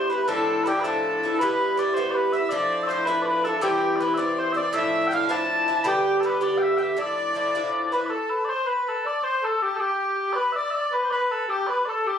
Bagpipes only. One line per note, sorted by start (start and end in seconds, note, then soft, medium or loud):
0.10 0.28 B4 medium
0.28 0.64 A4 medium
0.64 0.80 G4 medium
0.64 0.67 B4 medium
0.80 0.84 B4 medium
0.84 1.39 A4 medium
1.39 1.79 B4 loud
1.79 1.94 D5 medium
1.94 2.10 C5 loud
2.10 2.32 B4 medium
2.10 2.14 D5 medium
2.32 2.49 E5 medium
2.49 2.83 D5 medium
2.83 2.87 E5 medium
2.87 3.06 C5 medium
3.06 3.22 B4 medium
3.22 3.44 B4 medium
3.22 3.26 D5 medium
3.44 3.62 A4 medium
3.62 3.96 G4 medium
3.96 4.14 B4 loud
3.96 4.00 D5 loud
4.14 4.38 D5 medium
4.14 4.18 E5 medium
4.38 4.52 C5 medium
4.52 4.57 E5 medium
4.57 4.74 D5 medium
4.74 5.07 E5 medium
5.07 5.12 G5 medium
5.12 5.31 F5 loud
5.31 5.84 A5 loud
5.84 6.20 G4 loud
5.84 5.87 B5 loud
6.20 6.26 A4 medium
6.26 6.43 B4 loud
6.43 6.58 D5 loud
6.58 6.62 G5 loud
6.62 6.77 E5 loud
6.77 6.81 G5 loud
6.81 7.01 E5 loud
7.01 7.93 D5 loud
7.93 8.06 B4 medium
8.06 8.10 D5 medium
8.10 8.30 A4 medium
8.30 8.45 B4 medium
8.45 8.49 D5 medium
8.49 8.67 C5 medium
8.67 8.89 B4 medium
8.89 9.07 A4 medium
9.07 9.24 D5 medium
9.24 9.45 C5 medium
9.45 9.62 A4 medium
9.62 9.76 G4 medium
9.76 9.80 A4 medium
9.80 10.33 G4 medium
10.33 10.52 B4 medium
10.33 10.36 D5 medium
10.52 10.70 D5 medium
10.52 10.56 E5 medium
10.70 10.93 D5 medium
10.70 10.74 E5 medium
10.93 11.10 B4 medium
11.10 11.32 B4 medium
11.10 11.14 D5 medium
11.32 11.50 A4 medium
11.50 11.67 G4 medium
11.67 11.85 B4 medium
11.67 11.70 D5 medium
11.85 12.07 A4 medium
11.85 11.89 D5 medium
12.07 12.19 G4 medium